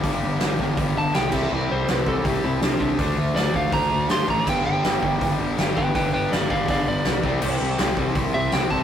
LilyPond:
<<
  \new Staff \with { instrumentName = "Lead electric guitar" } { \time 4/4 \key c \lydian \tempo 4 = 162 d'''2 r8 a''8 g''8 e''8 | d''8 c''8 b'8 a'8 g'8 e'8 d'8 d'8 | r4 d''8 f''8 bes''4 c'''8 bes''8 | g''8 g''2 r4 <b' g''>8 |
<b' g''>8 <b' g''>8 <d'' f''>8 <d'' f''>8 <d'' f''>8 d''4.~ | d''8 r2 e''8 g''8 a''8 | }
  \new Staff \with { instrumentName = "Distorted electric guitar" } { \clef bass \time 4/4 \key c \lydian <g, d g>4 <g, d g>8 <g, d g>8 <g, d g>4 <g, d g>8 <c g c'>8 | <c g c'>4 <c g c'>8 <c g c'>8 <c g c'>4 <c g c'>8 <c g c'>8 | <d a d'>4 <d a d'>8 <d a d'>8 <d a d'>4 <d a d'>8 <d a d'>8 | <g, d g>4 <g, d g>8 <g, d g>8 <g, d g>4 <g, d g>8 <g, d g>8 |
<g, d g>4 <g, d g>8 <g, d g>8 <g, d g>4 <g, d g>8 <c g c'>8 | <c g c'>4 <c g c'>8 <c g c'>8 <c g c'>4 <c g c'>8 <c g c'>8 | }
  \new Staff \with { instrumentName = "Distorted electric guitar" } { \clef bass \time 4/4 \key c \lydian <g, d>8 <g, d>8 <g, d>8 <g, d>8 <g, d>8 <g, d>8 <g, d>8 <c g c'>8 | <c g>8 <c g>8 <c g>8 <c g>8 <c g>8 <c g>8 <c g>8 <c g>8 | <d a d'>8 <d a>8 <d a>8 <d a>8 <d a>8 <d a>8 <d a>8 <d a>8 | <g, d g>8 <g, d>8 <g, d>8 <g, d>8 <g, d>8 <g, d>8 <g, d>8 <g, d>8 |
<g, d>8 <g, d>8 <g, d>8 <g, d>8 <g, d>8 <g, d>8 <g, d>8 <c g c'>8 | <c g>8 <c g>8 <c g>8 <c g>8 <c g>8 <c g>8 <c g>8 <c g>8 | }
  \new Staff \with { instrumentName = "Picked electric bass" } { \clef bass \time 4/4 \key c \lydian g,,8 g,,8 g,,8 g,,8 g,,8 g,,8 c,8 c,8 | c,8 c,8 c,8 c,8 c,8 c,8 c,8 c,8 | d,8 d,8 d,8 d,8 d,8 d,8 g,8 a,,8 | g,,8 g,,8 g,,8 g,,8 g,,8 g,,8 g,,8 g,,8 |
g,,8 g,,8 g,,8 g,,8 g,,8 g,,8 c,8 c,8 | c,8 c,8 c,8 c,8 c,8 c,8 c,8 c,8 | }
  \new DrumStaff \with { instrumentName = "Drums" } \drummode { \time 4/4 <hho bd>4 <hho sn>8 bd8 <hho bd>4 <hho sn>8 <cymc bd>8 | r4 <hho sn>8 bd8 <hho bd>4 <hho sn>8 bd8 | <hho bd>4 <hho sn>8 bd8 <hho bd>4 <hho sn>8 bd8 | <cymc bd>4 <hho sn>8 bd8 <hho bd>4 <hho sn>8 bd8 |
<hho bd>4 <hho sn>8 bd8 <hho bd>4 <hho sn>8 bd8 | cymc4 <hho sn>8 bd8 <hho bd>4 <hho sn>8 bd8 | }
>>